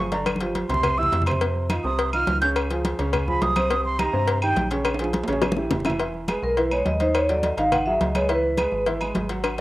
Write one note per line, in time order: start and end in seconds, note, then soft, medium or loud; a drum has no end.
0.00 0.64 G1 medium
0.00 0.10 C#6 loud
0.12 0.35 D3 medium
0.12 0.36 D4 medium
0.12 0.36 D5 medium
0.12 0.26 A#5 medium
0.12 cowbell medium
0.12 high conga medium
0.12 low agogo medium
0.26 cowbell loud
0.26 high conga medium
0.26 low agogo loud
0.26 claves medium
0.36 high conga medium
0.41 0.64 F3 medium
0.41 0.65 F4 medium
0.41 0.65 G4 medium
0.41 cowbell medium
0.55 cowbell medium
0.55 high conga medium
0.55 low timbale medium
0.55 low agogo medium
0.69 1.09 C2 loud
0.69 0.93 C3 medium
0.69 0.93 C4 medium
0.69 0.93 C5 medium
0.69 1.00 C6 loud
0.69 cowbell medium
0.69 low agogo medium
0.74 low conga medium
0.83 cowbell loud
0.83 low conga loud
0.83 low agogo loud
0.83 claves medium
0.98 1.22 E3 medium
0.98 1.22 E4 medium
0.98 1.22 G4 medium
0.98 1.26 E6 loud
1.03 low conga medium
1.12 1.79 F2 loud
1.12 cowbell medium
1.12 low timbale medium
1.12 low agogo medium
1.22 low conga loud
1.26 1.39 C3 medium
1.26 1.39 C4 medium
1.26 1.39 C5 medium
1.26 1.40 C6 medium
1.26 cowbell medium
1.26 low agogo loud
1.26 claves medium
1.31 low conga loud
1.41 1.65 C3 medium
1.41 1.65 C4 medium
1.41 1.65 C5 medium
1.41 cowbell loud
1.41 low agogo medium
1.55 high conga soft
1.70 1.82 D#3 medium
1.70 1.82 D#4 medium
1.70 1.82 F4 medium
1.70 cowbell medium
1.70 high conga loud
1.70 low timbale medium
1.70 low agogo loud
1.70 claves medium
1.84 2.24 C2 medium
1.84 2.08 C3 medium
1.84 2.08 C4 medium
1.84 2.08 C5 medium
1.84 2.11 D#6 loud
1.84 high conga soft
1.98 cowbell loud
1.98 high conga soft
1.98 low agogo medium
2.13 2.37 D#3 medium
2.13 2.37 D#4 medium
2.13 2.37 F4 medium
2.13 2.40 F6 loud
2.13 high conga soft
2.13 low agogo loud
2.13 claves medium
2.27 2.93 C#2 loud
2.27 cowbell medium
2.27 high conga medium
2.27 low timbale medium
2.41 2.65 C#3 medium
2.41 2.66 C#4 medium
2.41 2.66 C#5 medium
2.41 2.50 G6 loud
2.41 cowbell medium
2.41 low agogo medium
2.56 cowbell loud
2.56 high conga soft
2.56 low agogo loud
2.56 claves medium
2.70 2.94 F3 medium
2.70 2.94 F4 medium
2.70 2.94 G#4 medium
2.70 cowbell medium
2.70 high conga soft
2.85 cowbell medium
2.85 high conga loud
2.85 low timbale medium
2.85 low agogo medium
2.99 3.39 C#2 loud
2.99 3.22 C#3 medium
2.99 3.23 C#4 medium
2.99 3.23 C#5 medium
2.99 cowbell medium
2.99 low agogo medium
3.13 cowbell loud
3.13 high conga soft
3.13 low conga medium
3.13 low agogo loud
3.13 claves medium
3.27 3.51 F3 medium
3.27 3.51 F4 medium
3.27 3.51 G#4 medium
3.27 3.43 B5 loud
3.27 high conga soft
3.27 low conga medium
3.42 4.08 C2 loud
3.42 3.84 D#6 loud
3.42 cowbell medium
3.42 high conga medium
3.42 low timbale medium
3.42 low agogo medium
3.56 3.68 C3 medium
3.56 3.68 C4 medium
3.56 3.68 C5 medium
3.56 cowbell medium
3.56 high conga medium
3.56 low agogo loud
3.56 claves medium
3.70 3.94 C3 medium
3.70 3.94 C4 medium
3.70 3.94 C5 medium
3.70 cowbell loud
3.70 high conga soft
3.70 low agogo medium
3.85 4.01 C6 loud
3.85 high conga soft
3.99 4.11 D#3 medium
3.99 4.11 D#4 medium
3.99 4.11 G4 medium
3.99 4.42 A#5 loud
3.99 cowbell medium
3.99 high conga medium
3.99 low timbale medium
3.99 low agogo loud
3.99 claves medium
4.13 4.53 G2 loud
4.13 4.37 C3 medium
4.13 4.37 C4 medium
4.13 4.37 C5 medium
4.13 high conga soft
4.27 cowbell loud
4.27 high conga soft
4.27 low agogo medium
4.42 4.66 D#3 medium
4.42 4.66 D#4 medium
4.42 4.66 G4 medium
4.42 4.69 G5 loud
4.42 high conga soft
4.42 low agogo loud
4.42 claves medium
4.56 5.23 A#1 loud
4.56 cowbell medium
4.56 high conga medium
4.56 low timbale medium
4.71 4.94 C#3 medium
4.71 4.95 C#4 medium
4.71 4.95 C#5 medium
4.71 cowbell medium
4.71 low agogo medium
4.85 cowbell loud
4.85 high conga soft
4.85 high timbale medium
4.85 low agogo loud
4.85 claves medium
4.94 high timbale loud
4.99 5.23 F3 medium
4.99 5.23 F4 medium
4.99 5.23 G#4 medium
4.99 cowbell medium
4.99 high conga soft
5.04 high timbale medium
5.13 cowbell medium
5.13 high conga loud
5.13 low agogo medium
5.23 low timbale medium
5.28 5.68 A1 loud
5.28 5.52 C#3 medium
5.28 5.52 C#4 medium
5.28 5.52 C#5 medium
5.28 cowbell medium
5.28 low agogo medium
5.33 low timbale medium
5.42 cowbell loud
5.42 high bongo loud
5.42 high conga medium
5.42 low timbale medium
5.42 low agogo loud
5.42 claves medium
5.52 high conga loud
5.52 low timbale loud
5.57 5.80 E3 medium
5.57 5.80 E4 medium
5.57 5.81 G4 medium
5.57 low bongo medium
5.71 6.37 E1 loud
5.71 cowbell medium
5.71 low bongo medium
5.71 low conga loud
5.71 low timbale loud
5.71 low agogo medium
5.80 low conga medium
5.85 5.97 E3 medium
5.85 5.97 E4 medium
5.85 5.98 E5 medium
5.85 cowbell medium
5.85 low bongo medium
5.85 low agogo loud
5.85 claves medium
5.90 low conga medium
5.90 low timbale medium
5.99 6.23 E3 medium
5.99 6.24 E4 medium
5.99 6.24 E5 medium
5.99 cowbell loud
5.99 high conga soft
5.99 low agogo medium
6.14 high conga soft
6.28 6.52 G#3 medium
6.28 6.52 G#4 medium
6.28 6.53 B4 medium
6.28 cowbell medium
6.28 high conga loud
6.28 low timbale medium
6.28 low agogo loud
6.28 claves medium
6.43 6.83 B1 loud
6.43 6.57 A#4 medium
6.43 high conga soft
6.57 6.69 E3 medium
6.57 6.69 E4 medium
6.57 6.71 B4 medium
6.57 6.69 E5 medium
6.57 cowbell loud
6.57 high conga soft
6.57 low agogo medium
6.71 6.95 G#3 medium
6.71 6.95 G#4 medium
6.71 6.96 B4 medium
6.71 6.86 C#5 medium
6.71 high conga soft
6.71 low agogo loud
6.71 claves medium
6.86 7.52 D#2 loud
6.86 7.00 D#5 medium
6.86 cowbell medium
6.86 high conga medium
6.86 low timbale medium
7.00 7.24 D#3 medium
7.00 7.24 D#4 medium
7.00 7.15 C5 medium
7.00 7.24 D#5 medium
7.00 cowbell medium
7.00 high conga medium
7.00 low agogo medium
7.14 7.29 C#5 medium
7.14 cowbell loud
7.14 low agogo loud
7.14 claves medium
7.29 7.53 F#3 medium
7.29 7.53 F#4 medium
7.29 7.53 A4 medium
7.29 7.43 D5 medium
7.29 cowbell medium
7.29 high conga soft
7.43 7.58 D#5 medium
7.43 cowbell medium
7.43 high conga medium
7.43 low timbale medium
7.43 low agogo medium
7.57 7.98 G#1 loud
7.57 7.81 D#3 medium
7.57 7.82 D#4 medium
7.57 7.82 D#5 medium
7.57 7.72 F5 medium
7.57 cowbell medium
7.57 low agogo medium
7.72 7.86 F#5 loud
7.72 cowbell loud
7.72 high conga soft
7.72 low conga medium
7.72 low agogo loud
7.72 claves medium
7.86 8.10 F#3 medium
7.86 8.10 F#4 medium
7.86 8.11 G#4 medium
7.86 8.00 E5 medium
7.86 high conga soft
8.01 8.67 C#2 medium
8.01 8.15 D#5 medium
8.01 cowbell medium
8.01 high conga medium
8.01 low timbale medium
8.01 low agogo medium
8.15 8.27 G#3 medium
8.15 8.27 G#4 medium
8.15 8.27 B4 medium
8.15 8.29 C#5 medium
8.15 cowbell medium
8.15 high conga medium
8.15 low agogo loud
8.15 claves medium
8.29 8.53 E3 medium
8.29 8.53 E4 medium
8.29 8.83 B4 medium
8.29 8.53 E5 medium
8.29 cowbell loud
8.29 high conga soft
8.29 low agogo medium
8.43 high conga soft
8.57 8.82 G#3 medium
8.57 8.82 G#4 medium
8.57 8.82 B4 medium
8.57 cowbell medium
8.57 high conga medium
8.57 low timbale medium
8.57 low agogo loud
8.57 claves medium
8.72 9.12 G#1 medium
8.72 high conga soft
8.86 8.98 E3 medium
8.86 8.99 E4 medium
8.86 8.99 E5 medium
8.86 cowbell loud
8.86 high conga soft
8.86 low agogo medium
9.01 9.24 G#3 medium
9.01 9.25 G#4 medium
9.01 9.25 B4 medium
9.01 high conga soft
9.01 low agogo loud
9.01 claves medium
9.15 9.61 G#1 loud
9.15 cowbell medium
9.15 high conga medium
9.15 low timbale medium
9.29 9.53 F#3 medium
9.29 9.53 F#4 medium
9.29 9.54 F#5 medium
9.29 cowbell medium
9.29 low agogo medium
9.43 cowbell loud
9.43 high conga soft
9.43 high timbale loud
9.43 low agogo loud
9.43 claves medium